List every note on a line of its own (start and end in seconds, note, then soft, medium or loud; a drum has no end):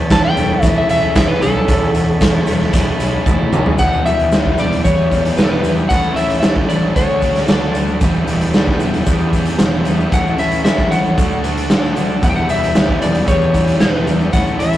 0.00 1.45 E2 medium
0.00 1.68 E2 medium
0.00 2.05 B2 medium
0.00 0.10 E3 medium
0.00 0.21 E3 medium
0.00 0.40 B3 medium
0.00 0.64 E4 medium
0.00 3.76 C#5 medium
0.00 3.76 A5 medium
0.00 3.75 B5 medium
0.10 0.27 E1 medium
0.10 2.21 E3 medium
0.10 0.24 A5 loud
0.10 kick loud
0.10 snare loud
0.10 closed hi-hat medium
0.10 shaker medium
0.21 0.83 E3 medium
0.25 0.63 G5 loud
0.37 0.53 E1 medium
0.37 1.69 A3 medium
0.37 closed hi-hat medium
0.37 shaker medium
0.62 0.79 E1 medium
0.62 1.15 E4 medium
0.62 0.75 E5 loud
0.62 kick loud
0.62 closed hi-hat medium
0.62 shaker medium
0.78 0.89 E5 medium
0.83 2.68 E3 medium
0.88 1.05 E1 medium
0.88 1.41 C#4 medium
0.88 1.15 E5 loud
0.88 closed hi-hat medium
0.88 shaker medium
1.15 1.32 E1 medium
1.15 2.47 E4 medium
1.15 1.29 E5 loud
1.15 kick loud
1.15 snare loud
1.15 closed hi-hat loud
1.15 shaker medium
1.28 1.41 B4 loud
1.42 1.58 B1 medium
1.42 8.60 E2 medium
1.42 2.74 C#4 medium
1.42 2.96 A4 loud
1.42 closed hi-hat medium
1.42 shaker medium
1.68 1.84 E1 loud
1.68 3.00 E2 medium
1.68 kick loud
1.68 closed hi-hat medium
1.68 shaker medium
1.94 2.11 E1 medium
1.94 closed hi-hat medium
1.94 shaker medium
2.05 9.20 B2 medium
2.20 2.37 E1 medium
2.20 3.53 E3 medium
2.20 kick loud
2.20 snare loud
2.20 closed hi-hat loud
2.20 shaker medium
2.46 2.64 E1 medium
2.46 3.79 A3 medium
2.46 closed hi-hat medium
2.46 shaker medium
2.61 snare soft
2.68 3.28 E3 medium
2.73 2.90 E1 loud
2.73 3.26 E4 medium
2.73 kick loud
2.73 closed hi-hat medium
2.73 shaker medium
3.00 3.16 B1 medium
3.00 3.52 C#4 medium
3.00 closed hi-hat medium
3.00 shaker medium
3.26 3.43 E1 medium
3.26 10.43 E3 medium
3.26 3.79 E4 medium
3.26 kick loud
3.26 high tom medium
3.26 shaker medium
3.52 3.69 B1 medium
3.52 3.79 C#4 medium
3.52 mid tom medium
3.52 shaker medium
3.66 floor tom medium
3.78 4.02 E1 medium
3.78 4.32 E2 medium
3.78 4.32 B2 medium
3.78 4.06 E3 medium
3.78 4.06 G3 medium
3.78 4.04 B3 loud
3.78 5.88 D4 medium
3.78 4.04 E4 loud
3.78 6.92 E5 medium
3.78 4.05 F#5 loud
3.78 5.88 G5 medium
3.78 kick loud
3.78 closed hi-hat medium
3.78 shaker medium
3.93 shaker soft
4.05 4.28 E1 medium
4.05 4.30 E3 medium
4.05 4.31 G3 medium
4.05 4.32 B3 medium
4.05 4.32 E4 medium
4.05 4.60 E5 loud
4.05 closed hi-hat medium
4.05 shaker medium
4.20 closed hi-hat medium
4.31 4.54 D2 medium
4.31 4.58 E3 medium
4.31 4.58 G3 medium
4.31 4.57 B3 medium
4.31 4.57 E4 medium
4.31 snare loud
4.31 closed hi-hat soft
4.31 shaker medium
4.45 kick medium
4.58 4.81 E1 medium
4.58 5.11 E2 medium
4.58 5.12 B2 medium
4.58 4.82 E3 medium
4.58 4.83 G3 medium
4.58 4.84 B3 medium
4.58 4.85 E4 medium
4.58 4.84 D5 medium
4.58 closed hi-hat medium
4.58 shaker medium
4.72 closed hi-hat medium
4.84 5.30 E2 medium
4.84 5.11 E3 medium
4.84 5.10 G3 medium
4.84 5.10 B3 medium
4.84 5.09 E4 medium
4.84 5.33 C#5 medium
4.84 kick loud
4.84 closed hi-hat medium
4.84 shaker medium
4.99 shaker soft
5.10 5.65 E2 medium
5.10 5.65 B2 medium
5.10 5.36 E3 medium
5.10 5.37 G3 medium
5.10 5.38 B3 medium
5.10 5.39 E4 medium
5.10 kick medium
5.10 closed hi-hat medium
5.10 shaker medium
5.25 closed hi-hat medium
5.37 5.60 E1 medium
5.37 5.65 E3 medium
5.37 5.65 G3 medium
5.37 5.64 B3 medium
5.37 5.63 E4 medium
5.37 5.44 B4 medium
5.37 snare loud
5.37 closed hi-hat medium
5.37 shaker medium
5.43 5.50 A4 medium
5.49 5.74 B4 medium
5.63 5.86 E2 medium
5.63 5.90 E3 medium
5.63 5.90 G3 medium
5.63 5.89 B3 medium
5.63 5.89 E4 medium
5.63 closed hi-hat medium
5.63 shaker medium
5.77 shaker soft
5.89 6.13 A1 medium
5.89 6.43 A2 medium
5.89 6.41 E3 medium
5.89 6.18 A3 medium
5.89 6.17 C#4 loud
5.89 6.95 C#5 medium
5.89 6.17 F#5 loud
5.89 7.99 A5 medium
5.89 kick loud
5.89 closed hi-hat medium
5.89 shaker medium
5.93 6.16 E4 medium
6.03 shaker soft
6.16 6.39 A1 medium
6.16 6.42 A3 medium
6.16 6.43 C#4 medium
6.16 6.44 E4 medium
6.16 6.39 E5 medium
6.16 closed hi-hat medium
6.16 shaker medium
6.30 closed hi-hat medium
6.40 6.65 G2 medium
6.40 6.69 E3 medium
6.40 6.69 A3 medium
6.40 6.48 E5 medium
6.40 snare loud
6.40 closed hi-hat medium
6.40 shaker medium
6.45 6.68 C#4 medium
6.45 6.67 E4 medium
6.56 kick medium
6.68 6.92 A1 medium
6.68 6.95 A2 medium
6.68 6.94 E3 medium
6.68 6.94 A3 medium
6.68 6.94 C#4 medium
6.68 6.94 E4 medium
6.68 6.96 D5 medium
6.68 closed hi-hat medium
6.68 shaker medium
6.95 7.41 D2 medium
6.95 7.24 D3 medium
6.95 7.23 A3 medium
6.95 7.22 D4 medium
6.95 10.10 D4 medium
6.95 7.21 F#4 medium
6.95 7.48 C#5 medium
6.95 8.01 F#5 medium
6.95 kick loud
6.95 closed hi-hat medium
6.95 shaker medium
7.09 shaker soft
7.22 7.47 D3 medium
7.22 7.48 A3 medium
7.22 7.49 D4 medium
7.22 7.50 F#4 medium
7.22 kick medium
7.22 closed hi-hat medium
7.22 shaker medium
7.35 snare soft
7.35 closed hi-hat medium
7.48 7.71 D2 medium
7.48 7.99 D3 medium
7.48 7.76 A3 medium
7.48 7.75 D4 medium
7.48 7.74 F#4 medium
7.48 7.85 D5 medium
7.48 snare loud
7.48 closed hi-hat medium
7.48 shaker medium
7.74 7.97 D2 medium
7.74 8.01 A3 medium
7.74 8.00 D4 medium
7.74 8.00 F#4 medium
7.74 closed hi-hat medium
7.74 shaker medium
7.88 shaker soft
8.01 8.24 E1 medium
8.01 8.54 E2 medium
8.01 8.54 B2 loud
8.01 8.29 E3 medium
8.01 8.28 G3 medium
8.01 8.27 B3 loud
8.01 8.26 E4 loud
8.01 11.14 E5 medium
8.01 10.10 G5 medium
8.01 kick loud
8.01 closed hi-hat medium
8.01 shaker medium
8.14 shaker soft
8.27 8.50 E1 medium
8.27 8.53 E3 medium
8.27 8.54 G3 medium
8.27 8.55 B3 medium
8.27 8.56 E4 medium
8.27 closed hi-hat medium
8.27 shaker medium
8.41 closed hi-hat medium
8.53 8.77 D2 medium
8.53 8.82 E3 medium
8.53 8.81 G3 medium
8.53 8.81 B3 medium
8.53 8.80 E4 medium
8.53 snare loud
8.53 closed hi-hat medium
8.53 shaker medium
8.67 kick medium
8.79 9.03 E1 medium
8.79 9.34 E2 medium
8.79 9.34 B2 medium
8.79 9.06 E3 medium
8.79 9.07 G3 medium
8.79 9.08 B3 medium
8.79 9.08 E4 medium
8.79 closed hi-hat medium
8.79 shaker medium
8.94 closed hi-hat soft
9.06 9.52 E2 medium
9.06 9.34 E3 medium
9.06 9.34 G3 medium
9.06 9.33 B3 medium
9.06 9.33 E4 medium
9.06 kick loud
9.06 closed hi-hat medium
9.06 shaker loud
9.20 shaker soft
9.33 9.87 E2 medium
9.33 9.87 B2 medium
9.33 9.59 E3 medium
9.33 9.59 G3 medium
9.33 9.60 B3 medium
9.33 9.61 E4 medium
9.33 kick medium
9.33 closed hi-hat medium
9.33 shaker medium
9.45 closed hi-hat medium
9.59 9.82 E1 medium
9.59 9.88 E3 medium
9.59 9.87 G3 medium
9.59 9.86 B3 medium
9.59 9.85 E4 medium
9.59 snare loud
9.59 closed hi-hat medium
9.59 shaker loud
9.85 10.09 E2 medium
9.85 10.12 G3 medium
9.85 10.11 B3 medium
9.85 10.11 E4 medium
9.85 closed hi-hat medium
9.85 shaker medium
9.89 10.12 E3 medium
10.00 shaker soft
10.12 10.35 A1 medium
10.12 10.65 A2 medium
10.12 10.64 E3 medium
10.12 10.41 A3 medium
10.12 10.40 C#4 loud
10.12 10.38 E4 loud
10.12 11.17 C#5 medium
10.12 10.40 F#5 loud
10.12 12.22 A5 medium
10.12 kick loud
10.12 closed hi-hat medium
10.12 shaker loud
10.27 shaker soft
10.38 10.61 A1 medium
10.38 10.66 C#4 medium
10.38 10.67 E4 medium
10.38 10.63 E5 medium
10.38 closed hi-hat medium
10.38 shaker medium
10.42 10.65 A3 medium
10.52 closed hi-hat medium
10.52 shaker soft
10.64 10.88 G2 medium
10.64 10.92 E3 medium
10.64 10.92 A3 medium
10.64 10.91 C#4 medium
10.64 10.90 E4 medium
10.64 10.92 E5 medium
10.64 snare loud
10.64 closed hi-hat medium
10.64 shaker loud
10.78 kick medium
10.78 shaker soft
10.91 11.14 A1 medium
10.91 11.17 A2 medium
10.91 11.16 E3 medium
10.91 11.16 A3 medium
10.91 11.16 C#4 medium
10.91 11.16 E4 medium
10.91 11.92 F#5 medium
10.91 closed hi-hat medium
10.91 shaker medium
11.06 shaker soft
11.16 11.63 D2 medium
11.16 11.44 D3 medium
11.16 11.43 A3 medium
11.16 11.42 D4 medium
11.16 11.41 F#4 loud
11.16 12.22 D5 medium
11.16 12.21 F#5 medium
11.16 kick loud
11.16 closed hi-hat medium
11.16 shaker loud
11.31 shaker soft
11.42 11.68 D3 medium
11.42 11.69 A3 medium
11.42 11.70 D4 medium
11.42 11.71 F#4 medium
11.42 closed hi-hat medium
11.42 shaker medium
11.57 closed hi-hat medium
11.69 11.93 D2 medium
11.69 12.21 D3 medium
11.69 11.97 A3 medium
11.69 11.96 D4 medium
11.69 11.94 F#4 medium
11.69 snare loud
11.69 closed hi-hat medium
11.69 shaker medium
11.84 shaker soft
11.95 12.20 D3 medium
11.95 12.22 A3 soft
11.95 12.22 D4 medium
11.95 12.21 F#4 medium
11.95 closed hi-hat medium
11.95 shaker medium
12.10 shaker soft
12.21 12.46 E1 medium
12.21 12.75 E2 loud
12.21 12.75 B2 medium
12.21 12.49 E3 medium
12.21 12.48 G3 medium
12.21 12.47 B3 loud
12.21 14.31 D4 medium
12.21 12.47 E4 loud
12.21 14.77 E5 medium
12.21 12.29 F#5 medium
12.21 14.31 G5 medium
12.21 kick loud
12.21 closed hi-hat medium
12.21 shaker medium
12.30 12.36 G5 medium
12.36 12.48 F#5 medium
12.36 shaker soft
12.48 12.72 E1 medium
12.48 12.73 E3 medium
12.48 12.74 G3 medium
12.48 12.75 B3 medium
12.48 12.76 E4 medium
12.48 13.02 E5 medium
12.48 closed hi-hat medium
12.48 shaker medium
12.63 closed hi-hat medium
12.75 12.98 D2 medium
12.75 13.01 E3 medium
12.75 13.01 G3 medium
12.75 13.00 B3 medium
12.75 13.00 E4 medium
12.75 snare loud
12.75 closed hi-hat medium
12.75 shaker medium
12.89 kick medium
13.01 13.25 E1 medium
13.01 13.55 E2 medium
13.01 13.54 B2 medium
13.01 13.26 E3 medium
13.01 13.27 G3 medium
13.01 13.28 B3 medium
13.01 13.29 E4 medium
13.01 13.28 D5 medium
13.01 closed hi-hat medium
13.01 shaker medium
13.14 closed hi-hat medium
13.27 13.74 E2 medium
13.27 13.54 E3 medium
13.27 13.53 G3 medium
13.27 13.53 B3 medium
13.27 13.52 E4 medium
13.27 13.83 C#5 medium
13.27 kick loud
13.27 closed hi-hat medium
13.27 shaker medium
13.42 shaker soft
13.53 14.08 E2 medium
13.53 14.08 B2 medium
13.53 13.78 E3 medium
13.53 13.79 G3 medium
13.53 13.80 B3 medium
13.53 13.80 E4 medium
13.53 kick medium
13.53 closed hi-hat medium
13.53 shaker medium
13.67 closed hi-hat medium
13.79 14.04 E1 medium
13.79 14.08 E3 medium
13.79 14.07 G3 medium
13.79 14.06 B3 medium
13.79 14.05 E4 medium
13.79 14.18 B4 medium
13.79 snare loud
13.79 closed hi-hat medium
13.79 shaker medium
14.07 14.30 E2 medium
14.07 14.32 E3 medium
14.07 14.33 G3 medium
14.07 14.32 B3 medium
14.07 14.32 E4 medium
14.07 closed hi-hat medium
14.07 shaker medium
14.20 shaker soft
14.33 14.56 A1 medium
14.33 14.77 A2 medium
14.33 14.77 E3 loud
14.33 14.60 A3 medium
14.33 14.59 C#4 loud
14.33 14.57 E4 medium
14.33 14.77 C#5 medium
14.33 14.61 F#5 medium
14.33 14.77 A5 medium
14.33 kick loud
14.33 closed hi-hat medium
14.33 shaker medium
14.47 shaker soft
14.58 14.77 A1 medium
14.58 14.77 A3 medium
14.58 14.77 C#4 medium
14.58 14.77 E4 medium
14.58 14.77 E5 medium
14.58 closed hi-hat medium
14.73 closed hi-hat medium